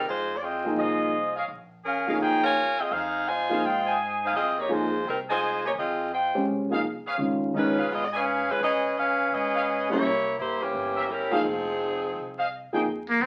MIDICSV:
0, 0, Header, 1, 7, 480
1, 0, Start_track
1, 0, Key_signature, -4, "minor"
1, 0, Tempo, 355450
1, 78, Time_signature, 4, 2, 24, 8
1, 17908, End_track
2, 0, Start_track
2, 0, Title_t, "Trumpet section"
2, 0, Program_c, 0, 61
2, 1043, Note_on_c, 0, 72, 75
2, 1044, Note_on_c, 0, 75, 89
2, 1045, Note_on_c, 0, 65, 76
2, 1045, Note_on_c, 0, 68, 76
2, 1774, Note_off_c, 0, 72, 0
2, 1775, Note_off_c, 0, 65, 0
2, 1775, Note_off_c, 0, 68, 0
2, 1775, Note_off_c, 0, 75, 0
2, 1831, Note_on_c, 0, 77, 86
2, 1834, Note_on_c, 0, 68, 82
2, 1835, Note_on_c, 0, 70, 74
2, 1835, Note_on_c, 0, 73, 76
2, 1946, Note_off_c, 0, 77, 0
2, 1948, Note_off_c, 0, 68, 0
2, 1948, Note_off_c, 0, 70, 0
2, 1948, Note_off_c, 0, 73, 0
2, 2799, Note_on_c, 0, 70, 73
2, 2800, Note_on_c, 0, 68, 81
2, 2800, Note_on_c, 0, 77, 92
2, 2801, Note_on_c, 0, 73, 74
2, 2912, Note_off_c, 0, 70, 0
2, 2912, Note_off_c, 0, 77, 0
2, 2913, Note_off_c, 0, 68, 0
2, 2913, Note_off_c, 0, 73, 0
2, 3926, Note_on_c, 0, 77, 73
2, 3928, Note_on_c, 0, 75, 61
2, 3929, Note_on_c, 0, 68, 68
2, 3930, Note_on_c, 0, 72, 62
2, 4140, Note_off_c, 0, 77, 0
2, 4141, Note_off_c, 0, 68, 0
2, 4141, Note_off_c, 0, 75, 0
2, 4142, Note_off_c, 0, 72, 0
2, 4729, Note_on_c, 0, 75, 76
2, 4731, Note_on_c, 0, 77, 91
2, 4732, Note_on_c, 0, 68, 82
2, 4732, Note_on_c, 0, 72, 75
2, 5178, Note_off_c, 0, 75, 0
2, 5179, Note_off_c, 0, 68, 0
2, 5179, Note_off_c, 0, 72, 0
2, 5179, Note_off_c, 0, 77, 0
2, 5213, Note_on_c, 0, 80, 92
2, 5214, Note_on_c, 0, 68, 94
2, 5214, Note_on_c, 0, 75, 78
2, 5216, Note_on_c, 0, 72, 86
2, 5826, Note_off_c, 0, 75, 0
2, 5826, Note_off_c, 0, 80, 0
2, 5827, Note_off_c, 0, 68, 0
2, 5828, Note_off_c, 0, 72, 0
2, 5854, Note_on_c, 0, 68, 68
2, 5855, Note_on_c, 0, 77, 79
2, 5856, Note_on_c, 0, 75, 65
2, 5860, Note_on_c, 0, 72, 63
2, 6067, Note_off_c, 0, 68, 0
2, 6067, Note_off_c, 0, 77, 0
2, 6068, Note_off_c, 0, 75, 0
2, 6071, Note_off_c, 0, 72, 0
2, 7135, Note_on_c, 0, 80, 100
2, 7136, Note_on_c, 0, 68, 85
2, 7137, Note_on_c, 0, 72, 81
2, 7137, Note_on_c, 0, 75, 84
2, 7749, Note_off_c, 0, 80, 0
2, 7750, Note_off_c, 0, 68, 0
2, 7750, Note_off_c, 0, 75, 0
2, 7751, Note_off_c, 0, 72, 0
2, 9063, Note_on_c, 0, 68, 86
2, 9063, Note_on_c, 0, 72, 78
2, 9063, Note_on_c, 0, 75, 80
2, 9067, Note_on_c, 0, 77, 100
2, 9173, Note_off_c, 0, 68, 0
2, 9173, Note_off_c, 0, 72, 0
2, 9173, Note_off_c, 0, 75, 0
2, 9176, Note_off_c, 0, 77, 0
2, 9539, Note_on_c, 0, 77, 108
2, 9542, Note_on_c, 0, 71, 88
2, 9542, Note_on_c, 0, 73, 86
2, 9543, Note_on_c, 0, 68, 94
2, 9651, Note_off_c, 0, 77, 0
2, 9653, Note_off_c, 0, 68, 0
2, 9653, Note_off_c, 0, 71, 0
2, 9653, Note_off_c, 0, 73, 0
2, 10501, Note_on_c, 0, 68, 80
2, 10501, Note_on_c, 0, 71, 76
2, 10501, Note_on_c, 0, 73, 70
2, 10503, Note_on_c, 0, 77, 86
2, 10612, Note_off_c, 0, 68, 0
2, 10612, Note_off_c, 0, 71, 0
2, 10612, Note_off_c, 0, 73, 0
2, 10613, Note_off_c, 0, 77, 0
2, 10971, Note_on_c, 0, 71, 84
2, 10971, Note_on_c, 0, 73, 81
2, 10972, Note_on_c, 0, 68, 90
2, 10973, Note_on_c, 0, 80, 94
2, 11085, Note_off_c, 0, 71, 0
2, 11085, Note_off_c, 0, 73, 0
2, 11086, Note_off_c, 0, 68, 0
2, 11087, Note_off_c, 0, 80, 0
2, 12886, Note_on_c, 0, 71, 86
2, 12887, Note_on_c, 0, 77, 100
2, 12888, Note_on_c, 0, 73, 80
2, 12890, Note_on_c, 0, 68, 89
2, 12999, Note_off_c, 0, 71, 0
2, 13000, Note_off_c, 0, 77, 0
2, 13001, Note_off_c, 0, 73, 0
2, 13002, Note_off_c, 0, 68, 0
2, 14795, Note_on_c, 0, 70, 92
2, 14798, Note_on_c, 0, 72, 84
2, 14798, Note_on_c, 0, 76, 98
2, 14799, Note_on_c, 0, 73, 83
2, 14910, Note_off_c, 0, 70, 0
2, 14911, Note_off_c, 0, 72, 0
2, 14911, Note_off_c, 0, 76, 0
2, 14912, Note_off_c, 0, 73, 0
2, 15279, Note_on_c, 0, 75, 82
2, 15280, Note_on_c, 0, 72, 87
2, 15282, Note_on_c, 0, 77, 99
2, 15283, Note_on_c, 0, 68, 82
2, 15391, Note_off_c, 0, 75, 0
2, 15392, Note_off_c, 0, 72, 0
2, 15393, Note_off_c, 0, 68, 0
2, 15393, Note_off_c, 0, 77, 0
2, 16722, Note_on_c, 0, 68, 81
2, 16722, Note_on_c, 0, 77, 98
2, 16723, Note_on_c, 0, 72, 82
2, 16725, Note_on_c, 0, 75, 81
2, 16831, Note_off_c, 0, 68, 0
2, 16831, Note_off_c, 0, 72, 0
2, 16831, Note_off_c, 0, 77, 0
2, 16833, Note_off_c, 0, 75, 0
2, 17193, Note_on_c, 0, 68, 80
2, 17197, Note_on_c, 0, 72, 72
2, 17197, Note_on_c, 0, 79, 92
2, 17198, Note_on_c, 0, 75, 77
2, 17305, Note_off_c, 0, 68, 0
2, 17307, Note_off_c, 0, 72, 0
2, 17307, Note_off_c, 0, 79, 0
2, 17308, Note_off_c, 0, 75, 0
2, 17908, End_track
3, 0, Start_track
3, 0, Title_t, "Saxophone section"
3, 0, Program_c, 1, 65
3, 100, Note_on_c, 1, 56, 80
3, 104, Note_on_c, 1, 63, 75
3, 105, Note_on_c, 1, 65, 80
3, 105, Note_on_c, 1, 72, 85
3, 476, Note_off_c, 1, 56, 0
3, 478, Note_off_c, 1, 63, 0
3, 478, Note_off_c, 1, 65, 0
3, 478, Note_off_c, 1, 72, 0
3, 495, Note_on_c, 1, 74, 57
3, 561, Note_off_c, 1, 74, 0
3, 577, Note_on_c, 1, 68, 65
3, 581, Note_on_c, 1, 65, 68
3, 583, Note_on_c, 1, 60, 69
3, 585, Note_on_c, 1, 75, 76
3, 1049, Note_off_c, 1, 68, 0
3, 1051, Note_off_c, 1, 65, 0
3, 1052, Note_off_c, 1, 60, 0
3, 1053, Note_off_c, 1, 75, 0
3, 2503, Note_on_c, 1, 68, 78
3, 2504, Note_on_c, 1, 61, 79
3, 2506, Note_on_c, 1, 70, 81
3, 2509, Note_on_c, 1, 77, 88
3, 2942, Note_off_c, 1, 68, 0
3, 2943, Note_off_c, 1, 61, 0
3, 2944, Note_off_c, 1, 70, 0
3, 2945, Note_off_c, 1, 77, 0
3, 2988, Note_on_c, 1, 63, 87
3, 2988, Note_on_c, 1, 79, 94
3, 2991, Note_on_c, 1, 72, 82
3, 2996, Note_on_c, 1, 68, 79
3, 3291, Note_off_c, 1, 63, 0
3, 3291, Note_off_c, 1, 79, 0
3, 3293, Note_off_c, 1, 72, 0
3, 3293, Note_on_c, 1, 73, 81
3, 3295, Note_off_c, 1, 68, 0
3, 3295, Note_on_c, 1, 70, 89
3, 3295, Note_on_c, 1, 80, 106
3, 3296, Note_on_c, 1, 65, 88
3, 3735, Note_off_c, 1, 73, 0
3, 3736, Note_off_c, 1, 70, 0
3, 3736, Note_off_c, 1, 80, 0
3, 3737, Note_off_c, 1, 65, 0
3, 3777, Note_on_c, 1, 75, 86
3, 3779, Note_on_c, 1, 65, 79
3, 3780, Note_on_c, 1, 60, 74
3, 3783, Note_on_c, 1, 68, 79
3, 3934, Note_off_c, 1, 68, 0
3, 3937, Note_off_c, 1, 75, 0
3, 3938, Note_off_c, 1, 65, 0
3, 3939, Note_off_c, 1, 60, 0
3, 3950, Note_on_c, 1, 68, 90
3, 3952, Note_on_c, 1, 77, 99
3, 3954, Note_on_c, 1, 63, 89
3, 3955, Note_on_c, 1, 72, 80
3, 4419, Note_off_c, 1, 72, 0
3, 4422, Note_off_c, 1, 68, 0
3, 4423, Note_off_c, 1, 77, 0
3, 4424, Note_off_c, 1, 63, 0
3, 4433, Note_on_c, 1, 80, 98
3, 4435, Note_on_c, 1, 72, 82
3, 4435, Note_on_c, 1, 75, 82
3, 4436, Note_on_c, 1, 65, 81
3, 4892, Note_off_c, 1, 65, 0
3, 4892, Note_off_c, 1, 75, 0
3, 4893, Note_off_c, 1, 72, 0
3, 4904, Note_off_c, 1, 80, 0
3, 4908, Note_on_c, 1, 75, 76
3, 4909, Note_on_c, 1, 65, 82
3, 4910, Note_on_c, 1, 72, 76
3, 4910, Note_on_c, 1, 79, 95
3, 5383, Note_off_c, 1, 65, 0
3, 5383, Note_off_c, 1, 72, 0
3, 5383, Note_off_c, 1, 75, 0
3, 5384, Note_off_c, 1, 79, 0
3, 5720, Note_on_c, 1, 72, 74
3, 5725, Note_on_c, 1, 77, 88
3, 5727, Note_on_c, 1, 68, 74
3, 5728, Note_on_c, 1, 63, 73
3, 5862, Note_off_c, 1, 72, 0
3, 5864, Note_off_c, 1, 77, 0
3, 5865, Note_off_c, 1, 68, 0
3, 5866, Note_off_c, 1, 63, 0
3, 5881, Note_on_c, 1, 65, 81
3, 5886, Note_on_c, 1, 60, 78
3, 5888, Note_on_c, 1, 68, 81
3, 5889, Note_on_c, 1, 75, 97
3, 6162, Note_off_c, 1, 65, 0
3, 6165, Note_off_c, 1, 60, 0
3, 6166, Note_off_c, 1, 68, 0
3, 6166, Note_off_c, 1, 75, 0
3, 6200, Note_on_c, 1, 58, 67
3, 6203, Note_on_c, 1, 67, 72
3, 6204, Note_on_c, 1, 73, 73
3, 6205, Note_on_c, 1, 63, 68
3, 6353, Note_off_c, 1, 58, 0
3, 6355, Note_off_c, 1, 67, 0
3, 6355, Note_off_c, 1, 73, 0
3, 6356, Note_off_c, 1, 63, 0
3, 6368, Note_on_c, 1, 56, 72
3, 6369, Note_on_c, 1, 72, 89
3, 6370, Note_on_c, 1, 65, 67
3, 6371, Note_on_c, 1, 63, 68
3, 6835, Note_off_c, 1, 56, 0
3, 6835, Note_off_c, 1, 72, 0
3, 6836, Note_off_c, 1, 63, 0
3, 6836, Note_off_c, 1, 65, 0
3, 6853, Note_on_c, 1, 55, 68
3, 6854, Note_on_c, 1, 60, 71
3, 6854, Note_on_c, 1, 63, 69
3, 6860, Note_on_c, 1, 70, 78
3, 6987, Note_off_c, 1, 55, 0
3, 6988, Note_off_c, 1, 60, 0
3, 6988, Note_off_c, 1, 63, 0
3, 6992, Note_off_c, 1, 70, 0
3, 7155, Note_on_c, 1, 56, 72
3, 7157, Note_on_c, 1, 72, 82
3, 7160, Note_on_c, 1, 63, 71
3, 7160, Note_on_c, 1, 65, 75
3, 7593, Note_off_c, 1, 56, 0
3, 7594, Note_off_c, 1, 72, 0
3, 7595, Note_off_c, 1, 63, 0
3, 7595, Note_off_c, 1, 65, 0
3, 7637, Note_on_c, 1, 63, 70
3, 7639, Note_on_c, 1, 67, 71
3, 7641, Note_on_c, 1, 73, 76
3, 7642, Note_on_c, 1, 58, 68
3, 7708, Note_off_c, 1, 63, 0
3, 7709, Note_off_c, 1, 67, 0
3, 7710, Note_off_c, 1, 73, 0
3, 7711, Note_off_c, 1, 58, 0
3, 7813, Note_on_c, 1, 68, 76
3, 7814, Note_on_c, 1, 60, 76
3, 7816, Note_on_c, 1, 75, 86
3, 7817, Note_on_c, 1, 65, 80
3, 8246, Note_off_c, 1, 60, 0
3, 8246, Note_off_c, 1, 68, 0
3, 8248, Note_off_c, 1, 65, 0
3, 8248, Note_off_c, 1, 75, 0
3, 8276, Note_on_c, 1, 72, 67
3, 8279, Note_on_c, 1, 79, 76
3, 8284, Note_on_c, 1, 75, 72
3, 8285, Note_on_c, 1, 65, 65
3, 8717, Note_off_c, 1, 72, 0
3, 8719, Note_off_c, 1, 79, 0
3, 8721, Note_off_c, 1, 75, 0
3, 8722, Note_off_c, 1, 65, 0
3, 10211, Note_on_c, 1, 61, 74
3, 10212, Note_on_c, 1, 56, 76
3, 10217, Note_on_c, 1, 65, 82
3, 10217, Note_on_c, 1, 71, 84
3, 10644, Note_off_c, 1, 61, 0
3, 10645, Note_off_c, 1, 56, 0
3, 10647, Note_off_c, 1, 65, 0
3, 10647, Note_off_c, 1, 71, 0
3, 10697, Note_on_c, 1, 65, 85
3, 10700, Note_on_c, 1, 59, 86
3, 10702, Note_on_c, 1, 68, 85
3, 10705, Note_on_c, 1, 75, 91
3, 10858, Note_off_c, 1, 75, 0
3, 10868, Note_off_c, 1, 65, 0
3, 10870, Note_off_c, 1, 59, 0
3, 10871, Note_off_c, 1, 68, 0
3, 10874, Note_on_c, 1, 75, 79
3, 10987, Note_off_c, 1, 75, 0
3, 11023, Note_on_c, 1, 68, 92
3, 11026, Note_on_c, 1, 61, 83
3, 11027, Note_on_c, 1, 71, 87
3, 11027, Note_on_c, 1, 77, 93
3, 11474, Note_off_c, 1, 71, 0
3, 11478, Note_off_c, 1, 68, 0
3, 11479, Note_off_c, 1, 61, 0
3, 11480, Note_off_c, 1, 77, 0
3, 11490, Note_on_c, 1, 56, 76
3, 11490, Note_on_c, 1, 71, 79
3, 11493, Note_on_c, 1, 61, 75
3, 11493, Note_on_c, 1, 65, 78
3, 11633, Note_off_c, 1, 71, 0
3, 11636, Note_off_c, 1, 61, 0
3, 11638, Note_off_c, 1, 56, 0
3, 11640, Note_off_c, 1, 65, 0
3, 11643, Note_on_c, 1, 75, 109
3, 11650, Note_on_c, 1, 71, 85
3, 11651, Note_on_c, 1, 68, 87
3, 11652, Note_on_c, 1, 61, 90
3, 12078, Note_off_c, 1, 75, 0
3, 12081, Note_off_c, 1, 68, 0
3, 12081, Note_off_c, 1, 71, 0
3, 12082, Note_off_c, 1, 61, 0
3, 12125, Note_on_c, 1, 71, 82
3, 12127, Note_on_c, 1, 68, 87
3, 12127, Note_on_c, 1, 77, 91
3, 12130, Note_on_c, 1, 61, 81
3, 12575, Note_off_c, 1, 68, 0
3, 12577, Note_off_c, 1, 71, 0
3, 12580, Note_off_c, 1, 61, 0
3, 12591, Note_off_c, 1, 77, 0
3, 12591, Note_on_c, 1, 68, 77
3, 12592, Note_on_c, 1, 75, 93
3, 12593, Note_on_c, 1, 71, 85
3, 12596, Note_on_c, 1, 61, 79
3, 13374, Note_off_c, 1, 68, 0
3, 13374, Note_off_c, 1, 75, 0
3, 13375, Note_off_c, 1, 71, 0
3, 13377, Note_off_c, 1, 61, 0
3, 13381, Note_on_c, 1, 64, 85
3, 13382, Note_on_c, 1, 58, 81
3, 13383, Note_on_c, 1, 73, 97
3, 13386, Note_on_c, 1, 67, 81
3, 13974, Note_off_c, 1, 58, 0
3, 13974, Note_off_c, 1, 64, 0
3, 13975, Note_off_c, 1, 73, 0
3, 13976, Note_off_c, 1, 67, 0
3, 14032, Note_on_c, 1, 64, 75
3, 14038, Note_on_c, 1, 58, 74
3, 14038, Note_on_c, 1, 72, 87
3, 14039, Note_on_c, 1, 67, 78
3, 14321, Note_off_c, 1, 67, 0
3, 14322, Note_off_c, 1, 58, 0
3, 14333, Note_off_c, 1, 64, 0
3, 14333, Note_on_c, 1, 52, 70
3, 14336, Note_off_c, 1, 72, 0
3, 14337, Note_on_c, 1, 67, 89
3, 14338, Note_on_c, 1, 58, 67
3, 14342, Note_on_c, 1, 61, 72
3, 14961, Note_off_c, 1, 61, 0
3, 14972, Note_off_c, 1, 52, 0
3, 14974, Note_off_c, 1, 67, 0
3, 14975, Note_off_c, 1, 58, 0
3, 14975, Note_on_c, 1, 64, 79
3, 14976, Note_on_c, 1, 70, 85
3, 14977, Note_on_c, 1, 61, 77
3, 14978, Note_on_c, 1, 55, 75
3, 15283, Note_off_c, 1, 64, 0
3, 15283, Note_off_c, 1, 70, 0
3, 15284, Note_off_c, 1, 55, 0
3, 15284, Note_off_c, 1, 61, 0
3, 15291, Note_on_c, 1, 60, 68
3, 15293, Note_on_c, 1, 63, 73
3, 15294, Note_on_c, 1, 53, 75
3, 15294, Note_on_c, 1, 68, 85
3, 16885, Note_off_c, 1, 60, 0
3, 16886, Note_off_c, 1, 63, 0
3, 16887, Note_off_c, 1, 53, 0
3, 16887, Note_off_c, 1, 68, 0
3, 17908, End_track
4, 0, Start_track
4, 0, Title_t, "Grand piano"
4, 0, Program_c, 2, 0
4, 867, Note_on_c, 2, 53, 57
4, 876, Note_on_c, 2, 58, 56
4, 881, Note_on_c, 2, 63, 59
4, 889, Note_on_c, 2, 68, 63
4, 1485, Note_off_c, 2, 53, 0
4, 1489, Note_off_c, 2, 58, 0
4, 1492, Note_off_c, 2, 63, 0
4, 1496, Note_off_c, 2, 68, 0
4, 2796, Note_on_c, 2, 58, 56
4, 2797, Note_on_c, 2, 53, 55
4, 2802, Note_on_c, 2, 63, 54
4, 2810, Note_on_c, 2, 68, 65
4, 3413, Note_off_c, 2, 58, 0
4, 3414, Note_off_c, 2, 53, 0
4, 3416, Note_off_c, 2, 63, 0
4, 3420, Note_off_c, 2, 68, 0
4, 4717, Note_on_c, 2, 53, 59
4, 4723, Note_on_c, 2, 58, 55
4, 4728, Note_on_c, 2, 63, 54
4, 4734, Note_on_c, 2, 68, 66
4, 4872, Note_off_c, 2, 53, 0
4, 4875, Note_off_c, 2, 58, 0
4, 4878, Note_off_c, 2, 63, 0
4, 4881, Note_off_c, 2, 68, 0
4, 6325, Note_on_c, 2, 53, 60
4, 6334, Note_on_c, 2, 63, 61
4, 6335, Note_on_c, 2, 58, 55
4, 6343, Note_on_c, 2, 68, 70
4, 6614, Note_off_c, 2, 53, 0
4, 6619, Note_off_c, 2, 58, 0
4, 6619, Note_off_c, 2, 63, 0
4, 6623, Note_off_c, 2, 68, 0
4, 8567, Note_on_c, 2, 56, 56
4, 8568, Note_on_c, 2, 61, 51
4, 8572, Note_on_c, 2, 67, 53
4, 8580, Note_on_c, 2, 72, 62
4, 9021, Note_off_c, 2, 56, 0
4, 9021, Note_off_c, 2, 61, 0
4, 9023, Note_off_c, 2, 67, 0
4, 9027, Note_off_c, 2, 72, 0
4, 9048, Note_on_c, 2, 53, 57
4, 9051, Note_on_c, 2, 58, 53
4, 9053, Note_on_c, 2, 63, 55
4, 9062, Note_on_c, 2, 68, 62
4, 9203, Note_off_c, 2, 53, 0
4, 9204, Note_off_c, 2, 58, 0
4, 9205, Note_off_c, 2, 63, 0
4, 9210, Note_off_c, 2, 68, 0
4, 9691, Note_on_c, 2, 51, 57
4, 9695, Note_on_c, 2, 56, 49
4, 9702, Note_on_c, 2, 61, 51
4, 9706, Note_on_c, 2, 65, 66
4, 10151, Note_off_c, 2, 51, 0
4, 10158, Note_off_c, 2, 56, 0
4, 10163, Note_off_c, 2, 61, 0
4, 10168, Note_off_c, 2, 65, 0
4, 10171, Note_on_c, 2, 51, 63
4, 10178, Note_on_c, 2, 56, 57
4, 10184, Note_on_c, 2, 61, 59
4, 10186, Note_on_c, 2, 63, 72
4, 10458, Note_off_c, 2, 51, 0
4, 10462, Note_off_c, 2, 56, 0
4, 10465, Note_off_c, 2, 61, 0
4, 10466, Note_off_c, 2, 63, 0
4, 13360, Note_on_c, 2, 55, 62
4, 13367, Note_on_c, 2, 58, 54
4, 13374, Note_on_c, 2, 61, 56
4, 13378, Note_on_c, 2, 64, 66
4, 13513, Note_off_c, 2, 55, 0
4, 13517, Note_off_c, 2, 58, 0
4, 13520, Note_off_c, 2, 61, 0
4, 13522, Note_off_c, 2, 64, 0
4, 15266, Note_on_c, 2, 53, 62
4, 15274, Note_on_c, 2, 58, 58
4, 15281, Note_on_c, 2, 63, 58
4, 15289, Note_on_c, 2, 68, 65
4, 15422, Note_off_c, 2, 53, 0
4, 15426, Note_off_c, 2, 58, 0
4, 15430, Note_off_c, 2, 63, 0
4, 15433, Note_off_c, 2, 68, 0
4, 17186, Note_on_c, 2, 53, 67
4, 17187, Note_on_c, 2, 58, 64
4, 17192, Note_on_c, 2, 63, 62
4, 17203, Note_on_c, 2, 68, 81
4, 17338, Note_off_c, 2, 53, 0
4, 17339, Note_off_c, 2, 58, 0
4, 17342, Note_off_c, 2, 63, 0
4, 17347, Note_off_c, 2, 68, 0
4, 17908, End_track
5, 0, Start_track
5, 0, Title_t, "Muted trumpet"
5, 0, Program_c, 3, 59
5, 17679, Note_on_c, 3, 58, 80
5, 17858, Note_on_c, 3, 60, 71
5, 17878, Note_off_c, 3, 58, 0
5, 17908, Note_off_c, 3, 60, 0
5, 17908, End_track
6, 0, Start_track
6, 0, Title_t, "Upright bass"
6, 0, Program_c, 4, 32
6, 71, Note_on_c, 4, 41, 81
6, 988, Note_off_c, 4, 41, 0
6, 1038, Note_on_c, 4, 36, 85
6, 1954, Note_off_c, 4, 36, 0
6, 1998, Note_on_c, 4, 34, 85
6, 2916, Note_off_c, 4, 34, 0
6, 2966, Note_on_c, 4, 37, 77
6, 3881, Note_off_c, 4, 37, 0
6, 3926, Note_on_c, 4, 41, 81
6, 4843, Note_off_c, 4, 41, 0
6, 4889, Note_on_c, 4, 44, 86
6, 5807, Note_off_c, 4, 44, 0
6, 5846, Note_on_c, 4, 41, 86
6, 6766, Note_off_c, 4, 41, 0
6, 6815, Note_on_c, 4, 36, 82
6, 7731, Note_off_c, 4, 36, 0
6, 7768, Note_on_c, 4, 41, 87
6, 8515, Note_off_c, 4, 41, 0
6, 8573, Note_on_c, 4, 40, 65
6, 8724, Note_off_c, 4, 40, 0
6, 8733, Note_on_c, 4, 36, 81
6, 9477, Note_off_c, 4, 36, 0
6, 9706, Note_on_c, 4, 37, 78
6, 10300, Note_off_c, 4, 37, 0
6, 10344, Note_on_c, 4, 41, 58
6, 10492, Note_off_c, 4, 41, 0
6, 10503, Note_on_c, 4, 36, 63
6, 10652, Note_off_c, 4, 36, 0
6, 10665, Note_on_c, 4, 44, 81
6, 11401, Note_off_c, 4, 44, 0
6, 11452, Note_on_c, 4, 44, 67
6, 11608, Note_off_c, 4, 44, 0
6, 11622, Note_on_c, 4, 37, 82
6, 12530, Note_off_c, 4, 37, 0
6, 12579, Note_on_c, 4, 44, 83
6, 13487, Note_off_c, 4, 44, 0
6, 13537, Note_on_c, 4, 36, 90
6, 13980, Note_off_c, 4, 36, 0
6, 14016, Note_on_c, 4, 43, 80
6, 14458, Note_off_c, 4, 43, 0
6, 14489, Note_on_c, 4, 31, 82
6, 15397, Note_off_c, 4, 31, 0
6, 15451, Note_on_c, 4, 29, 87
6, 16357, Note_off_c, 4, 29, 0
6, 16411, Note_on_c, 4, 36, 82
6, 17142, Note_off_c, 4, 36, 0
6, 17357, Note_on_c, 4, 41, 84
6, 17822, Note_off_c, 4, 41, 0
6, 17829, Note_on_c, 4, 37, 84
6, 17908, Note_off_c, 4, 37, 0
6, 17908, End_track
7, 0, Start_track
7, 0, Title_t, "Muted upright bass strokes"
7, 9535, Note_on_c, 9, 29, 36
7, 9670, Note_off_c, 9, 29, 0
7, 17201, Note_on_c, 9, 29, 38
7, 17336, Note_off_c, 9, 29, 0
7, 17908, End_track
0, 0, End_of_file